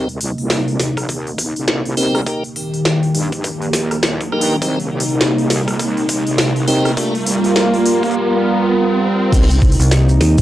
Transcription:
0.00 0.19 C2 loud
0.00 2.24 C3 medium
0.00 2.24 A#3 medium
0.00 2.24 D#4 medium
0.00 riser medium
0.09 open hi-hat soft
0.20 0.35 C2 medium
0.20 open hi-hat medium
0.38 0.77 C2 medium
0.38 open hi-hat soft
0.50 snare loud
0.50 open hi-hat soft
0.68 open hi-hat soft
0.79 0.94 D#2 medium
0.79 snare medium
0.79 open hi-hat medium
0.97 1.07 A#1 medium
0.97 kick medium
0.97 cross-stick soft
0.97 open hi-hat soft
1.09 1.53 D#2 loud
1.09 kick loud
1.09 open hi-hat soft
1.27 open hi-hat soft
1.38 kick loud
1.38 open hi-hat medium
1.56 1.95 C2 medium
1.56 open hi-hat soft
1.68 snare loud
1.85 open hi-hat soft
1.97 2.25 C2 medium
1.97 2.21 C4 medium
1.97 2.21 D#4 medium
1.97 2.21 G4 medium
1.97 2.21 A#4 loud
1.97 open hi-hat medium
2.15 cross-stick medium
2.15 open hi-hat soft
2.26 4.60 D#3 medium
2.26 2.43 A#3 medium
2.26 6.93 A#3 medium
2.26 2.43 D#4 medium
2.26 2.43 G4 medium
2.26 4.60 G4 medium
2.26 2.43 A#4 medium
2.26 kick loud
2.26 open hi-hat soft
2.44 open hi-hat soft
2.56 open hi-hat medium
2.74 open hi-hat soft
2.85 snare loud
2.85 open hi-hat soft
3.03 open hi-hat soft
3.15 3.72 G2 medium
3.15 open hi-hat medium
3.32 kick medium
3.32 open hi-hat soft
3.44 kick loud
3.44 open hi-hat soft
3.62 open hi-hat soft
3.73 4.31 D#2 medium
3.73 kick loud
3.73 snare medium
3.73 open hi-hat medium
3.91 cross-stick soft
3.91 open hi-hat soft
4.03 snare loud
4.03 open hi-hat soft
4.21 kick medium
4.21 open hi-hat soft
4.32 4.60 G2 loud
4.32 4.56 A#3 loud
4.32 4.56 D#4 medium
4.32 4.56 G4 medium
4.32 4.56 A#4 loud
4.32 cross-stick soft
4.41 open hi-hat medium
4.50 open hi-hat soft
4.62 4.89 C2 loud
4.62 6.95 C3 medium
4.62 4.79 C4 medium
4.62 6.95 D#4 medium
4.62 4.79 D#4 medium
4.62 4.79 G4 medium
4.62 4.79 A#4 medium
4.62 kick loud
4.62 open hi-hat soft
4.80 open hi-hat soft
4.91 5.06 C2 medium
5.00 open hi-hat medium
5.09 5.48 C2 loud
5.09 open hi-hat soft
5.21 snare loud
5.21 open hi-hat soft
5.38 open hi-hat soft
5.50 5.65 D#2 loud
5.50 snare medium
5.50 open hi-hat medium
5.68 5.78 A#1 loud
5.68 kick medium
5.68 cross-stick soft
5.68 open hi-hat soft
5.71 cross-stick soft
5.74 cross-stick soft
5.77 cross-stick soft
5.79 6.24 D#2 loud
5.79 kick loud
5.79 cross-stick soft
5.79 open hi-hat soft
5.84 cross-stick soft
5.88 cross-stick soft
5.93 cross-stick soft
5.97 open hi-hat soft
6.09 kick loud
6.09 open hi-hat medium
6.27 6.66 C2 medium
6.27 open hi-hat soft
6.38 snare loud
6.38 open hi-hat soft
6.56 open hi-hat soft
6.68 6.95 C2 loud
6.68 6.92 C4 medium
6.68 6.92 D#4 medium
6.68 6.92 G4 medium
6.68 6.92 A#4 loud
6.68 open hi-hat medium
6.85 cross-stick medium
6.85 open hi-hat soft
6.97 9.30 G3 medium
6.97 7.14 D4 medium
6.97 7.14 F4 medium
6.97 9.30 F4 medium
6.97 7.14 G4 medium
6.97 7.14 A#4 medium
6.97 9.30 A#4 loud
6.97 kick loud
6.97 open hi-hat soft
7.15 open hi-hat soft
7.21 open hi-hat soft
7.26 7.71 C2 loud
7.26 open hi-hat medium
7.44 open hi-hat soft
7.56 snare loud
7.56 open hi-hat soft
7.74 open hi-hat soft
7.86 open hi-hat medium
8.03 8.15 G1 loud
8.03 kick medium
8.03 open hi-hat soft
8.05 open hi-hat soft
8.11 open hi-hat soft
9.32 9.60 C2 loud
9.32 10.42 C3 medium
9.32 10.42 A#3 medium
9.32 9.49 C4 medium
9.32 9.49 D#4 medium
9.32 10.42 D#4 medium
9.32 9.49 G4 medium
9.32 9.49 A#4 medium
9.32 kick loud
9.32 open hi-hat soft
9.32 crash loud
9.32 maracas medium
9.50 open hi-hat soft
9.50 maracas soft
9.62 9.77 C2 loud
9.62 kick medium
9.62 open hi-hat soft
9.72 open hi-hat soft
9.79 10.19 C2 medium
9.79 open hi-hat soft
9.79 maracas medium
9.82 open hi-hat medium
9.91 snare loud
9.91 open hi-hat soft
9.91 maracas medium
10.09 open hi-hat soft
10.09 maracas soft
10.20 10.35 D#2 medium
10.20 snare medium
10.20 open hi-hat medium
10.38 10.42 A#1 loud
10.38 kick loud
10.38 open hi-hat soft
10.38 maracas medium

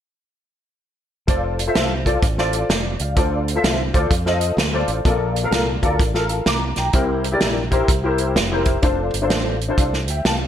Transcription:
1.27 1.68 F1 medium
1.27 1.57 F4 medium
1.27 1.58 A4 medium
1.27 1.58 C5 medium
1.27 1.58 D5 medium
1.27 kick loud
1.27 closed hi-hat medium
1.59 closed hi-hat medium
1.67 1.90 F4 medium
1.67 1.90 A4 medium
1.67 1.90 C5 medium
1.67 1.91 E5 medium
1.75 2.16 C2 medium
1.75 snare medium
1.75 closed hi-hat medium
2.05 2.22 F4 medium
2.05 2.22 A4 medium
2.05 2.23 C5 medium
2.05 2.22 D5 medium
2.05 kick medium
2.05 closed hi-hat medium
2.23 2.63 A1 medium
2.23 kick loud
2.23 closed hi-hat medium
2.38 2.66 F4 medium
2.38 2.66 A4 medium
2.38 2.67 C5 medium
2.38 2.67 D5 medium
2.38 snare soft
2.53 closed hi-hat medium
2.69 2.95 F1 medium
2.69 2.99 D5 medium
2.69 snare medium
2.69 closed hi-hat medium
2.99 3.14 C#2 medium
2.99 3.15 D5 soft
2.99 3.45 F5 medium
2.99 closed hi-hat medium
3.15 3.57 D2 loud
3.15 3.90 D3 medium
3.15 3.46 F4 medium
3.15 3.46 A4 medium
3.15 3.46 C5 medium
3.15 3.47 D5 medium
3.15 kick loud
3.15 closed hi-hat medium
3.48 closed hi-hat medium
3.55 3.78 F4 medium
3.55 3.78 A4 medium
3.55 3.79 C5 medium
3.55 3.79 E5 medium
3.64 3.90 C2 medium
3.64 snare medium
3.64 closed hi-hat medium
3.93 4.08 D2 medium
3.93 4.10 F4 medium
3.93 4.10 A4 medium
3.93 4.11 C5 medium
3.93 4.11 D5 medium
3.93 kick medium
3.93 closed hi-hat medium
4.11 4.51 F2 medium
4.11 kick loud
4.11 closed hi-hat loud
4.25 4.54 F4 medium
4.25 4.55 A4 medium
4.25 4.55 C5 medium
4.25 4.55 D#5 medium
4.25 snare soft
4.41 closed hi-hat medium
4.57 4.83 D2 medium
4.57 snare loud
4.57 closed hi-hat medium
4.73 4.96 F4 medium
4.73 4.97 A4 medium
4.73 4.97 C5 medium
4.73 4.97 D5 medium
4.88 5.02 A1 medium
4.88 closed hi-hat medium
5.04 5.45 A#1 loud
5.04 5.79 A#2 medium
5.04 5.35 F4 medium
5.04 5.35 A4 medium
5.04 5.35 A#4 medium
5.04 5.36 D5 medium
5.04 kick loud
5.04 closed hi-hat medium
5.36 closed hi-hat medium
5.43 5.66 F4 medium
5.43 5.67 A4 medium
5.43 5.67 A#4 medium
5.43 5.68 F5 medium
5.51 5.78 C2 medium
5.51 snare medium
5.51 closed hi-hat medium
5.82 5.97 D2 medium
5.82 5.99 F4 medium
5.82 5.99 A4 medium
5.82 5.99 A#4 medium
5.82 6.00 D5 medium
5.82 kick medium
5.82 closed hi-hat medium
5.99 6.40 A1 medium
5.99 kick loud
5.99 closed hi-hat medium
6.14 6.43 F4 medium
6.14 6.43 A4 medium
6.14 6.44 A#4 medium
6.14 6.44 F5 medium
6.14 snare soft
6.29 closed hi-hat medium
6.46 6.72 C2 medium
6.46 6.76 A#5 soft
6.46 6.76 D6 medium
6.46 snare medium
6.46 closed hi-hat medium
6.76 6.91 B1 medium
6.76 7.23 G5 soft
6.76 7.22 A#5 medium
6.76 snare soft
6.76 closed hi-hat medium
6.93 7.34 C2 loud
6.93 7.68 C3 medium
6.93 7.23 E4 medium
6.93 7.24 G4 medium
6.93 7.24 A#4 medium
6.93 7.24 C5 medium
6.93 kick loud
6.93 closed hi-hat medium
7.24 closed hi-hat medium
7.32 7.55 E4 medium
7.32 7.56 G4 medium
7.32 7.56 A#4 medium
7.32 7.56 D5 medium
7.41 7.82 A#1 medium
7.41 snare medium
7.41 closed hi-hat medium
7.71 7.88 E4 medium
7.71 7.88 G4 medium
7.71 7.88 A#4 medium
7.71 7.88 C5 medium
7.71 kick medium
7.71 closed hi-hat medium
7.88 8.37 C2 medium
7.88 kick loud
7.88 closed hi-hat loud
8.04 8.32 E4 medium
8.04 8.32 G4 medium
8.04 8.33 A#4 medium
8.04 8.33 C5 medium
8.18 closed hi-hat medium
8.36 8.76 F1 medium
8.36 snare medium
8.36 closed hi-hat medium
8.51 8.74 E4 medium
8.51 8.75 G4 medium
8.51 8.75 A#4 medium
8.51 8.75 C5 medium
8.65 kick medium
8.65 closed hi-hat medium
8.82 9.09 F1 loud
8.82 9.13 D4 medium
8.82 9.13 F4 medium
8.82 9.13 A4 medium
8.82 9.13 C5 medium
8.82 kick loud
8.82 closed hi-hat medium
9.14 9.30 G1 medium
9.14 closed hi-hat medium
9.22 9.55 D4 medium
9.22 9.55 F4 medium
9.22 9.55 A4 medium
9.22 9.55 C5 medium
9.30 9.70 A1 medium
9.30 snare medium
9.30 closed hi-hat medium
9.61 closed hi-hat medium
9.68 9.92 D4 medium
9.68 9.92 F4 medium
9.68 9.93 A4 medium
9.68 9.93 C5 medium
9.77 10.08 C2 medium
9.77 kick loud
9.77 closed hi-hat loud
9.93 snare soft
10.08 10.22 D2 medium
10.08 10.25 E5 soft
10.08 10.25 G5 medium
10.08 closed hi-hat medium
10.25 10.47 C2 medium
10.25 10.47 F5 medium
10.25 10.47 A5 medium
10.25 snare loud
10.25 closed hi-hat medium

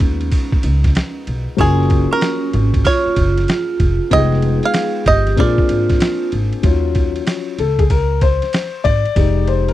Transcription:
0.00 0.28 D#2 medium
0.00 1.54 G#3 medium
0.00 1.54 B3 medium
0.00 1.22 C#4 medium
0.00 1.54 D#4 medium
0.00 1.55 F4 medium
0.00 1.55 A#4 medium
0.00 kick medium
0.00 ride medium
0.21 ride soft
0.32 kick medium
0.32 ride medium
0.52 muted upright bass stroke soft
0.52 kick medium
0.63 0.92 C#2 medium
0.63 ride medium
0.84 kick medium
0.84 snare soft
0.84 ride soft
0.95 snare loud
0.95 hi-hat pedal soft
0.95 ride medium
1.27 1.45 B1 medium
1.27 ride medium
1.57 2.05 F#1 loud
1.57 4.06 F#3 medium
1.57 4.06 A#3 medium
1.57 4.07 C#4 medium
1.57 2.07 C#4 medium
1.57 4.07 F4 medium
1.57 4.08 G#4 medium
1.57 2.12 G#4 medium
1.57 kick loud
1.57 ride medium
1.80 snare soft
1.90 kick loud
1.90 ride medium
2.11 2.81 C#4 medium
2.11 2.88 A#4 medium
2.21 snare loud
2.21 hi-hat pedal soft
2.21 ride medium
2.53 2.81 G#1 medium
2.53 ride medium
2.74 kick medium
2.74 ride soft
2.85 4.07 F4 medium
2.85 4.13 C#5 medium
2.85 kick medium
2.85 ride medium
3.06 muted upright bass stroke soft
3.16 3.45 F#1 medium
3.16 kick medium
3.16 ride medium
3.38 snare soft
3.38 ride soft
3.48 snare loud
3.48 hi-hat pedal soft
3.48 ride medium
3.80 3.98 F1 medium
3.80 kick medium
3.80 ride medium
4.10 4.57 F1 loud
4.10 4.19 G3 medium
4.10 5.35 B3 medium
4.10 5.35 D#4 medium
4.10 5.35 F4 medium
4.10 4.60 G#4 medium
4.10 4.65 D#5 loud
4.10 5.36 G5 medium
4.10 kick loud
4.10 ride medium
4.17 5.38 G#3 medium
4.32 snare soft
4.42 ride soft
4.63 5.03 G#4 medium
4.63 5.07 F5 medium
4.63 ride soft
4.74 snare loud
4.74 hi-hat pedal soft
4.74 ride medium
5.06 5.34 G1 loud
5.06 5.36 G4 medium
5.06 5.39 D#5 loud
5.06 kick medium
5.06 ride medium
5.27 snare soft
5.27 ride soft
5.36 5.56 A#1 loud
5.36 6.60 A#3 medium
5.36 6.61 C4 medium
5.36 6.61 D4 medium
5.36 6.61 F4 medium
5.36 6.29 F4 medium
5.36 6.62 G#4 medium
5.36 6.29 D5 medium
5.36 kick medium
5.36 ride medium
5.58 muted upright bass stroke soft
5.58 kick medium
5.69 5.97 G#1 medium
5.69 ride medium
5.89 kick medium
5.89 snare soft
5.89 ride soft
6.00 snare loud
6.00 hi-hat pedal soft
6.00 ride medium
6.32 6.51 G#1 medium
6.32 ride medium
6.53 ride soft
6.63 7.19 D#2 loud
6.63 7.54 F#3 medium
6.63 7.54 C#4 soft
6.63 7.55 F4 medium
6.63 kick loud
6.63 ride medium
6.95 kick medium
6.95 ride soft
7.16 ride soft
7.27 snare loud
7.27 hi-hat pedal soft
7.27 ride medium
7.58 8.38 C#2 medium
7.58 7.80 A4 medium
7.58 ride medium
7.79 7.91 G#4 medium
7.79 kick medium
7.79 ride soft
7.90 8.20 A#4 medium
7.90 kick medium
7.90 ride medium
8.21 8.87 C5 loud
8.21 kick medium
8.21 ride medium
8.42 snare soft
8.42 ride soft
8.53 snare loud
8.53 hi-hat pedal soft
8.53 ride medium
8.84 9.03 G#1 medium
8.84 9.49 D5 loud
8.84 kick medium
8.84 ride medium
9.05 ride soft
9.15 9.72 F1 loud
9.15 9.73 G#3 soft
9.15 9.73 D#4 medium
9.15 9.73 G4 medium
9.15 kick loud
9.15 ride medium
9.47 9.67 C5 medium
9.47 ride medium
9.68 9.73 A#4 medium
9.68 ride soft

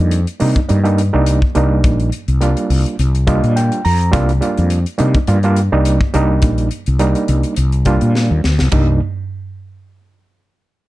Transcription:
0.00 0.25 F2 medium
0.00 0.18 G3 medium
0.00 0.18 A#3 medium
0.00 0.19 D4 medium
0.00 0.19 D#4 medium
0.11 closed hi-hat medium
0.27 closed hi-hat soft
0.40 0.55 C3 medium
0.40 0.59 G3 medium
0.40 0.58 A#3 medium
0.40 0.59 D4 medium
0.40 0.59 D#4 medium
0.40 open hi-hat medium
0.56 muted fretless electric bass stroke soft
0.56 kick medium
0.56 closed hi-hat soft
0.69 1.10 G2 loud
0.69 0.78 G3 medium
0.69 0.78 A#3 medium
0.69 0.78 D4 medium
0.69 0.79 D#4 medium
0.69 closed hi-hat medium
0.84 1.01 G3 medium
0.84 1.01 A#3 medium
0.84 1.01 D4 medium
0.84 1.01 D#4 medium
0.84 closed hi-hat soft
0.98 closed hi-hat medium
1.13 1.40 C2 medium
1.13 1.39 G3 medium
1.13 1.40 A#3 medium
1.13 1.40 D4 medium
1.13 1.40 D#4 loud
1.26 closed hi-hat medium
1.42 kick medium
1.55 1.84 C2 medium
1.55 2.08 G3 medium
1.55 2.09 A#3 medium
1.55 2.09 D4 medium
1.55 2.09 D#4 loud
1.55 closed hi-hat medium
1.84 2.10 A#1 medium
1.84 kick loud
1.84 closed hi-hat medium
2.00 closed hi-hat soft
2.12 closed hi-hat medium
2.28 2.54 C2 medium
2.28 closed hi-hat soft
2.41 2.94 G3 medium
2.41 2.94 A#3 medium
2.41 2.95 D4 medium
2.41 2.95 F4 medium
2.41 closed hi-hat medium
2.57 closed hi-hat soft
2.70 2.84 C2 loud
2.70 open hi-hat medium
2.86 closed hi-hat soft
2.99 3.39 C2 medium
2.99 closed hi-hat medium
3.15 closed hi-hat soft
3.27 3.80 G3 medium
3.27 3.80 A#3 medium
3.27 3.81 D4 medium
3.27 3.81 F4 medium
3.27 3.54 D#5 medium
3.27 kick medium
3.27 closed hi-hat medium
3.44 3.69 A#2 medium
3.44 closed hi-hat soft
3.56 3.83 G5 medium
3.56 closed hi-hat medium
3.72 closed hi-hat soft
3.85 4.11 F2 medium
3.85 4.11 A#5 medium
3.85 open hi-hat medium
4.01 closed hi-hat soft
4.12 4.40 C2 medium
4.12 4.31 G3 medium
4.12 4.31 A#3 medium
4.12 4.31 D4 medium
4.12 4.32 F4 loud
4.12 kick loud
4.12 closed hi-hat medium
4.29 closed hi-hat soft
4.41 4.77 G3 medium
4.41 4.77 A#3 medium
4.41 4.78 D4 medium
4.41 4.78 F4 medium
4.41 closed hi-hat medium
4.58 4.84 F2 medium
4.58 closed hi-hat soft
4.70 closed hi-hat medium
4.86 closed hi-hat soft
4.98 5.14 C3 loud
4.98 5.17 G3 medium
4.98 5.17 A#3 medium
4.98 5.18 D4 medium
4.98 5.18 D#4 medium
4.98 closed hi-hat medium
5.14 muted fretless electric bass stroke soft
5.14 kick medium
5.14 closed hi-hat soft
5.27 5.68 G2 loud
5.27 5.37 G3 medium
5.27 5.37 A#3 medium
5.27 5.38 D4 medium
5.27 5.38 F4 medium
5.27 closed hi-hat medium
5.43 5.60 G3 medium
5.43 5.60 A#3 medium
5.43 5.61 D4 medium
5.43 5.61 F4 loud
5.43 closed hi-hat soft
5.56 closed hi-hat medium
5.72 5.98 C2 medium
5.72 5.99 G3 medium
5.72 5.99 A#3 medium
5.72 5.99 D4 medium
5.72 5.99 D#4 loud
5.85 closed hi-hat medium
6.01 kick medium
6.14 6.42 C2 medium
6.14 6.67 G3 loud
6.14 6.68 A#3 medium
6.14 6.68 D4 medium
6.14 6.68 D#4 loud
6.14 closed hi-hat medium
6.42 6.69 A#1 medium
6.42 kick loud
6.42 closed hi-hat medium
6.58 closed hi-hat soft
6.71 closed hi-hat medium
6.86 7.13 C2 medium
6.86 closed hi-hat soft
6.99 7.53 G3 medium
6.99 7.53 A#3 medium
6.99 7.54 D4 medium
6.99 7.54 D#4 medium
6.99 closed hi-hat medium
7.15 closed hi-hat soft
7.28 7.43 C2 loud
7.28 closed hi-hat medium
7.43 closed hi-hat soft
7.56 7.98 C2 medium
7.56 closed hi-hat medium
7.72 closed hi-hat soft
7.85 8.40 G3 medium
7.85 8.40 A#3 medium
7.85 8.40 D4 medium
7.85 8.40 F4 loud
7.85 kick medium
7.85 closed hi-hat medium
8.01 8.28 A#2 medium
8.01 closed hi-hat soft
8.15 snare medium
8.31 8.43 D#2 medium
8.44 8.58 D2 medium
8.44 snare medium
8.59 8.72 C2 medium
8.59 snare medium
8.72 8.99 C2 medium
8.72 8.99 G3 medium
8.72 8.99 A#3 medium
8.72 8.99 D4 medium
8.72 8.99 D#4 medium
8.72 kick medium
8.72 floor tom loud
8.72 ride bell medium

